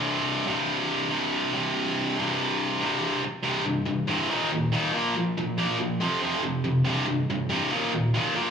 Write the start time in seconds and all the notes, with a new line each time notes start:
Already playing: C2 G2 C3
0.46 C2 G2 C3
1.10 C2 G2 C3
1.52 C2 G2 C3
2.17 C2 G2 C3
2.80 C2 G2 C3
3.43 C2 G2 C3
3.66 C2 G2
3.85 C2 G2
4.07 C2 G2 C3
4.30 D#2 A#2 D#3
4.52 D#2 A#2
4.72 D#2 A#2 D#3
4.93 A#2 F3 A#3
5.16 A#2 F3
5.37 A#2 F3
5.58 A#2 F3 A#3
5.79 A#2 F3
6.00 F2 C3 F3
6.22 F2 C3 F3
6.43 F2 C3
6.64 F2 C3
6.85 C2 G2 C3
7.07 C2 G2
7.30 C2 G2
7.49 C2 G2 C3
7.71 D#2 A#2 D#3
7.93 D#2 A#2
8.14 D#2 A#2 D#3
8.35 A#2 F3 A#3